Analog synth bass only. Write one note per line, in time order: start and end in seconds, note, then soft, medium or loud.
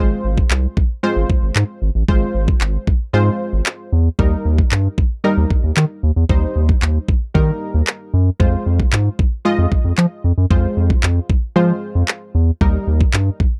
0.00 0.14 G#1 loud
0.24 0.41 G#1 loud
0.51 0.67 C2 medium
1.16 1.25 G#1 medium
1.43 1.51 G#1 medium
1.56 1.64 G#2 loud
1.82 1.90 G#1 medium
1.95 2.03 A1 medium
2.08 2.25 G#1 loud
2.34 2.51 G#1 loud
2.61 2.77 G#1 medium
3.14 3.30 G#2 loud
3.53 3.61 G#1 medium
3.93 4.09 E2 loud
4.19 4.35 D#2 loud
4.45 4.62 D#2 loud
4.72 4.88 G2 loud
5.37 5.46 D#2 medium
5.64 5.72 D#2 medium
5.77 5.85 D#3 loud
6.03 6.11 D#2 medium
6.16 6.25 E2 medium
6.29 6.46 D#2 loud
6.56 6.72 D#2 loud
6.82 6.99 D#2 loud
7.35 7.51 D#3 loud
7.74 7.82 D#2 medium
8.14 8.30 F#2 loud
8.40 8.56 F2 loud
8.66 8.83 F2 loud
8.93 9.09 G#2 loud
9.58 9.67 F2 medium
9.85 9.93 F2 loud
9.98 10.06 F3 loud
10.24 10.32 F2 medium
10.38 10.46 F#2 medium
10.51 10.67 F2 loud
10.77 10.93 F2 loud
11.03 11.20 F2 loud
11.56 11.72 F3 loud
11.95 12.03 F2 loud
12.35 12.51 E2 medium
12.61 12.77 D#2 loud
12.87 13.04 D#2 medium
13.14 13.30 G2 medium